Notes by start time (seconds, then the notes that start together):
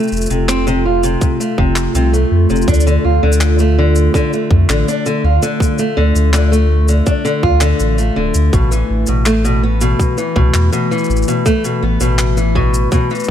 Already playing: C3 A3 F4 A4
0.03 shaker
0.08 shaker
0.12 F1, shaker
0.17 shaker
0.21 shaker
0.26 shaker
0.30 F1 C3, shaker
0.48 C4, clap, shaker
0.67 C3, shaker
0.85 F4
1.03 C3, shaker
1.21 kick, shaker
1.40 A3, shaker
1.58 F1 C3, kick
1.76 clap, shaker
1.95 C2 C3, shaker
2.13 A3, shaker
2.31 F2
2.50 F1 C3, shaker
2.56 shaker
2.62 shaker
2.68 D2 D3 D4, kick, shaker
2.74 shaker
2.80 shaker
2.87 D3, shaker
3.04 D2 F4
3.23 D2 D3
3.32 shaker
3.41 clap, shaker
3.59 A3, shaker
3.78 D3
3.96 shaker
4.14 D3, kick, shaker
4.33 A3, shaker
4.51 F2, kick
4.69 A1 D3, clap, shaker
4.88 D4, shaker
5.06 D3, shaker
5.24 D2 F4
5.43 D3, shaker
5.60 kick, shaker
5.78 A3, shaker
5.97 D2 D3
6.15 D2, shaker
6.33 D3, clap, shaker
6.52 A3, shaker
6.88 D3, shaker
7.06 D4, kick, shaker
7.25 D3, shaker
7.43 D2 F4, kick
7.61 D3, clap, shaker
7.80 A1, shaker
7.98 A3, shaker
8.16 D1 D3
8.35 D2, shaker
8.53 A1 B2, kick, shaker
8.71 E3, shaker
8.90 A1
9.07 A1 B2, shaker
9.19 E3
9.26 A3, clap, shaker
9.44 B2, shaker
9.63 B3
9.81 B2, shaker
9.99 kick, shaker
10.18 E3, shaker
10.36 C2 B2, kick
10.54 E2, clap, shaker
10.72 B2, shaker
10.91 E3, shaker
10.98 shaker
11.04 shaker
11.10 A1, shaker
11.16 B4, shaker
11.22 shaker
11.28 B2, shaker
11.46 A3, kick, shaker
11.64 B2, shaker
11.82 A1 B3
12.01 A1 B2, shaker
12.19 clap, shaker
12.37 E3, shaker
12.55 B2, kick
12.74 shaker
12.92 B2, kick, shaker
13.10 E3, shaker
13.15 shaker
13.20 shaker
13.24 shaker